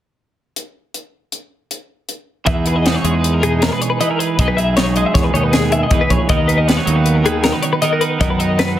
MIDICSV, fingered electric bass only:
0, 0, Header, 1, 2, 480
1, 0, Start_track
1, 0, Tempo, 383142
1, 692, Time_signature, 5, 2, 24, 8
1, 11015, End_track
2, 0, Start_track
2, 0, Title_t, "Fingered electric bass"
2, 0, Program_c, 0, 33
2, 3098, Note_on_c, 0, 40, 81
2, 3704, Note_off_c, 0, 40, 0
2, 3809, Note_on_c, 0, 40, 75
2, 4622, Note_off_c, 0, 40, 0
2, 5499, Note_on_c, 0, 35, 86
2, 6307, Note_off_c, 0, 35, 0
2, 6450, Note_on_c, 0, 40, 72
2, 6653, Note_off_c, 0, 40, 0
2, 6687, Note_on_c, 0, 39, 88
2, 7297, Note_off_c, 0, 39, 0
2, 7406, Note_on_c, 0, 40, 88
2, 7509, Note_off_c, 0, 40, 0
2, 7641, Note_on_c, 0, 34, 92
2, 7746, Note_off_c, 0, 34, 0
2, 7886, Note_on_c, 0, 39, 94
2, 8497, Note_off_c, 0, 39, 0
2, 8608, Note_on_c, 0, 39, 80
2, 9422, Note_off_c, 0, 39, 0
2, 10280, Note_on_c, 0, 42, 85
2, 11015, Note_off_c, 0, 42, 0
2, 11015, End_track
0, 0, End_of_file